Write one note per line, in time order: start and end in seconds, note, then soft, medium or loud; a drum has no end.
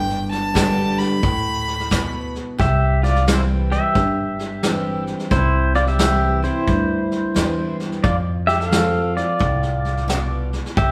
0.00 1.03 G1 loud
0.00 1.18 G2 medium
0.00 0.27 G5 loud
0.10 snare soft
0.31 1.00 A5 loud
0.31 snare soft
0.54 1.20 D3 medium
0.54 1.20 G3 loud
0.54 1.21 B3 medium
0.54 1.21 G4 medium
0.54 kick medium
0.54 snare loud
0.54 hi-hat pedal medium
0.98 2.34 B5 loud
0.98 snare soft
1.23 2.39 D2 medium
1.23 1.88 A2 medium
1.23 kick loud
1.23 snare soft
1.68 snare soft
1.80 snare soft
1.91 2.56 B2 medium
1.91 kick medium
1.91 snare loud
1.91 hi-hat pedal medium
2.35 snare soft
2.58 3.75 C2 medium
2.58 3.90 C3 medium
2.58 3.00 G4 medium
2.58 3.04 E5 loud
2.58 kick loud
2.58 snare soft
3.03 3.25 F4 medium
3.03 3.28 D5 medium
3.03 snare soft
3.15 snare soft
3.27 3.92 E3 medium
3.27 3.93 G3 medium
3.27 3.93 C4 medium
3.27 3.94 E4 medium
3.27 3.40 E4 medium
3.27 3.40 C5 medium
3.27 snare loud
3.27 hi-hat pedal medium
3.72 5.03 G4 medium
3.72 5.04 E5 medium
3.72 snare soft
3.95 5.11 G1 medium
3.95 5.27 G2 medium
3.95 kick loud
3.95 snare soft
4.39 snare soft
4.63 5.29 E3 medium
4.63 5.29 G3 medium
4.63 5.30 C4 medium
4.63 5.30 E4 medium
4.63 snare medium
4.63 hi-hat pedal medium
5.07 snare soft
5.19 snare soft
5.31 6.47 C2 medium
5.31 6.62 C3 medium
5.31 5.72 E4 medium
5.31 5.75 C5 medium
5.31 kick loud
5.31 snare soft
5.75 5.87 F4 medium
5.75 5.87 D5 medium
5.75 snare soft
5.87 6.40 G4 medium
5.87 6.45 E5 loud
5.87 snare soft
5.99 6.41 E3 medium
5.99 6.42 G3 medium
5.99 6.42 C4 medium
5.99 6.41 E4 medium
5.99 snare loud
5.99 hi-hat pedal medium
6.43 6.67 C4 soft
6.43 6.66 E4 medium
6.43 7.76 E4 medium
6.43 7.76 C5 medium
6.43 snare soft
6.67 7.25 D2 medium
6.67 7.99 G2 medium
6.67 kick loud
6.67 snare soft
7.11 snare soft
7.35 7.94 E2 medium
7.35 8.01 E3 medium
7.35 8.01 G3 medium
7.35 8.02 C4 medium
7.35 8.02 E4 medium
7.35 snare loud
7.35 hi-hat pedal medium
7.80 snare soft
7.92 snare soft
8.04 9.20 F2 medium
8.04 9.35 F2 medium
8.04 8.16 F4 medium
8.04 8.16 D5 medium
8.04 kick loud
8.04 snare soft
8.47 8.59 G4 medium
8.47 8.60 E5 medium
8.47 snare soft
8.60 9.13 A4 medium
8.60 9.18 F5 loud
8.60 snare soft
8.71 9.37 F3 medium
8.71 9.38 A3 medium
8.71 9.38 C4 medium
8.71 9.39 F4 medium
8.71 snare loud
8.71 hi-hat pedal medium
9.17 10.49 F4 medium
9.17 10.49 D5 medium
9.17 snare soft
9.39 10.57 C2 medium
9.39 10.06 A2 medium
9.39 kick loud
9.39 snare soft
9.63 snare soft
9.85 snare soft
9.97 snare soft
10.08 10.74 B2 medium
10.08 snare loud
10.08 hi-hat pedal medium
10.53 snare soft
10.65 snare soft
10.77 10.91 C2 medium
10.77 10.91 C3 medium
10.77 10.91 G4 medium
10.77 10.91 E5 loud
10.77 kick loud
10.77 snare soft